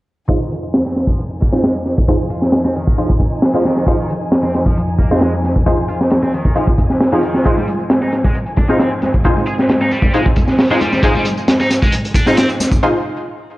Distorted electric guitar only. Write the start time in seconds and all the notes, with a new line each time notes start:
0.29 F3
0.41 D#3
0.86 C4
1.07 F3
1.41 A#3
1.53 C4
1.63 G#3
2.30 F4
2.65 C4
2.76 D#3
2.98 F3
3.54 F3
3.66 D#3
3.88 F3
3.99 D#3
4.44 C4
4.67 F3
5.00 A#3
5.11 C4
5.21 G#3
5.89 F4
6.23 C4
6.34 D#3
6.56 F3
7.13 F3
7.23 D#3
7.45 G#3
7.57 G3
8.02 D#4
8.25 G#3
8.58 D4
8.69 D#4
8.80 C4
9.47 G#4
9.81 D#4
9.92 G3
10.14 G#3
10.71 G#3
10.82 G3
11.04 G#3
11.16 G3
11.60 D#4
11.83 G#3
12.16 D4
12.27 D#4
12.38 C4